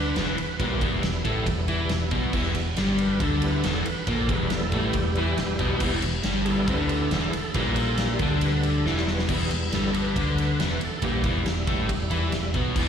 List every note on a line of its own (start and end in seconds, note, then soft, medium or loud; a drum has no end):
0.00 0.13 D2 loud
0.00 0.16 D3 medium
0.00 0.16 D4 loud
0.00 0.80 B4 medium
0.16 0.37 E1 loud
0.16 0.37 E2 medium
0.16 0.38 E3 loud
0.16 snare loud
0.16 ride medium
0.38 muted overdriven electric guitar stroke medium
0.38 ride medium
0.60 0.80 A#1 medium
0.60 0.81 A#2 medium
0.60 2.30 G3 medium
0.60 0.81 A#3 loud
0.60 2.30 B3 medium
0.60 2.30 E4 medium
0.60 kick loud
0.60 ride loud
0.81 1.02 E1 loud
0.81 1.02 E2 medium
0.81 1.03 E3 loud
0.81 kick loud
0.81 ride medium
1.03 1.23 E1 medium
1.03 1.20 E2 medium
1.03 snare loud
1.03 ride medium
1.25 1.45 A1 loud
1.25 1.46 A2 medium
1.25 1.46 A3 loud
1.25 kick loud
1.25 ride medium
1.46 1.67 E1 medium
1.46 1.64 E2 medium
1.46 kick loud
1.46 ride loud
1.67 1.88 E2 medium
1.67 1.89 E3 medium
1.67 1.90 E4 loud
1.67 ride medium
1.89 2.10 E1 medium
1.89 2.08 E2 medium
1.89 snare loud
1.89 ride loud
2.11 2.32 B1 loud
2.11 2.33 B2 medium
2.11 2.33 B3 medium
2.11 kick loud
2.11 ride medium
2.32 2.54 E1 loud
2.32 2.54 E2 medium
2.32 2.55 E3 loud
2.32 2.62 G3 medium
2.32 2.62 B3 medium
2.32 2.63 E4 medium
2.32 kick loud
2.32 crash loud
2.55 2.76 E1 medium
2.55 2.73 E2 medium
2.55 ride medium
2.77 3.17 G1 medium
2.77 3.20 G2 loud
2.77 3.20 G3 loud
2.77 snare loud
2.77 ride loud
2.98 3.21 B4 medium
2.98 ride medium
3.20 3.61 D2 medium
3.20 3.64 D3 medium
3.20 3.64 D4 loud
3.20 3.43 A4 medium
3.20 kick loud
3.20 ride loud
3.42 3.62 G3 medium
3.42 3.63 B3 soft
3.42 3.63 E4 medium
3.42 ride medium
3.46 3.65 B4 medium
3.64 3.85 E1 loud
3.64 3.85 E2 loud
3.64 3.85 E3 loud
3.64 snare loud
3.64 ride loud
3.68 3.87 A4 medium
3.86 3.88 A#4 medium
3.86 4.09 B4 medium
3.86 muted overdriven electric guitar stroke medium
3.86 ride medium
4.07 4.27 A#1 loud
4.07 4.29 A#2 medium
4.07 4.29 A#3 loud
4.07 4.30 A4 medium
4.07 kick loud
4.07 ride medium
4.29 4.49 E1 loud
4.29 4.50 E2 loud
4.29 4.51 E3 loud
4.29 5.99 G3 medium
4.29 5.99 B3 medium
4.29 6.00 E4 medium
4.29 kick loud
4.29 ride medium
4.33 4.52 B4 medium
4.50 4.71 E1 medium
4.50 4.69 E2 medium
4.50 4.74 A4 loud
4.50 snare loud
4.50 ride loud
4.72 4.93 A1 loud
4.72 4.94 A2 loud
4.72 4.94 A3 loud
4.72 kick loud
4.72 ride medium
4.77 6.01 G4 loud
4.93 5.14 E1 medium
4.93 5.13 E2 medium
4.93 kick loud
4.93 ride loud
5.15 5.36 E2 medium
5.15 5.38 E3 medium
5.15 5.38 E4 loud
5.15 ride medium
5.37 5.57 E1 medium
5.37 5.55 E2 medium
5.37 snare loud
5.37 ride medium
5.59 5.80 B1 loud
5.59 5.81 B2 medium
5.59 5.81 B3 loud
5.59 kick medium
5.59 ride medium
5.80 6.01 E1 loud
5.80 6.03 E2 medium
5.80 6.03 E3 loud
5.80 kick loud
5.80 crash loud
6.02 6.23 E1 medium
6.02 6.21 E2 medium
6.02 ride medium
6.23 6.64 G1 loud
6.23 6.68 G2 medium
6.23 6.68 G3 loud
6.23 snare loud
6.23 ride loud
6.45 7.08 G3 medium
6.45 7.09 B3 medium
6.45 7.09 E4 medium
6.45 6.47 G#4 medium
6.45 ride medium
6.49 6.69 A4 loud
6.68 7.08 D2 loud
6.68 7.11 D3 medium
6.68 7.12 D4 loud
6.68 6.90 B4 medium
6.68 kick loud
6.68 ride loud
6.89 7.12 A4 medium
6.89 ride medium
7.11 7.31 E1 loud
7.11 7.33 E2 medium
7.11 7.33 E3 medium
7.11 7.34 E4 medium
7.11 snare loud
7.11 ride loud
7.29 7.32 G#4 medium
7.29 7.54 A4 medium
7.29 ride medium
7.34 muted overdriven electric guitar stroke medium
7.53 8.16 A#1 loud
7.53 8.19 A#2 loud
7.53 9.08 G3 medium
7.53 8.20 A#3 loud
7.53 7.97 E4 medium
7.53 7.77 B4 medium
7.53 kick loud
7.53 ride loud
7.76 7.98 A4 medium
7.76 ride medium
7.98 8.19 E4 loud
7.98 snare loud
7.98 ride loud
8.19 8.81 D2 medium
8.19 8.85 D3 loud
8.19 8.85 D4 loud
8.19 8.41 A4 medium
8.19 kick loud
8.19 ride medium
8.41 8.64 B4 medium
8.41 ride loud
8.63 8.86 A4 medium
8.63 ride medium
8.85 9.25 E1 loud
8.85 9.28 E2 medium
8.85 9.28 E3 loud
8.85 9.07 E4 medium
8.85 snare medium
8.97 snare medium
9.07 9.28 G3 medium
9.07 9.28 B3 loud
9.07 snare medium
9.19 snare medium
9.29 9.49 E1 loud
9.29 9.50 E2 loud
9.29 9.50 E3 medium
9.29 9.91 G3 medium
9.29 9.91 B3 soft
9.29 9.92 E4 medium
9.29 kick loud
9.29 crash loud
9.49 9.70 E1 medium
9.49 9.68 E2 medium
9.49 ride medium
9.72 10.13 G1 medium
9.72 10.16 G2 medium
9.72 10.16 G3 loud
9.72 9.94 A4 loud
9.72 snare loud
9.72 ride loud
9.93 9.95 A#4 medium
9.93 ride medium
9.98 10.80 B4 medium
10.16 10.56 D2 medium
10.16 10.59 D3 medium
10.16 10.59 D4 loud
10.16 kick loud
10.16 ride loud
10.38 ride medium
10.59 10.79 E1 medium
10.59 10.80 E2 medium
10.59 10.81 E3 loud
10.59 snare loud
10.59 ride loud
10.81 11.04 A4 medium
10.81 muted overdriven electric guitar stroke medium
10.81 ride medium
11.02 11.23 A#1 medium
11.02 11.24 A#2 loud
11.02 11.23 G3 medium
11.02 11.24 A#3 loud
11.02 11.31 B3 soft
11.02 11.24 E4 medium
11.02 11.25 G4 medium
11.02 kick loud
11.02 ride loud
11.24 11.45 E1 loud
11.24 11.45 E2 medium
11.24 11.46 E3 loud
11.24 12.51 G3 medium
11.24 12.51 E4 medium
11.24 kick loud
11.24 ride medium
11.46 11.66 E1 medium
11.46 11.64 E2 medium
11.46 snare loud
11.46 ride loud
11.67 11.88 A1 loud
11.67 11.89 A2 medium
11.67 11.89 A3 loud
11.67 kick loud
11.67 ride medium
11.89 12.10 E1 medium
11.89 12.07 E2 medium
11.89 kick loud
11.89 ride loud
12.11 12.31 E2 medium
12.11 12.32 E3 medium
12.11 12.33 E4 loud
12.11 ride medium
12.32 12.53 E1 medium
12.32 12.51 E2 medium
12.32 snare loud
12.32 ride medium
12.54 12.75 B1 medium
12.54 12.76 B2 medium
12.54 12.76 B3 loud
12.54 kick loud
12.54 ride medium
12.76 12.88 E1 loud
12.76 12.88 E2 medium
12.76 12.88 E3 loud
12.76 12.88 D5 medium
12.76 kick loud
12.76 crash loud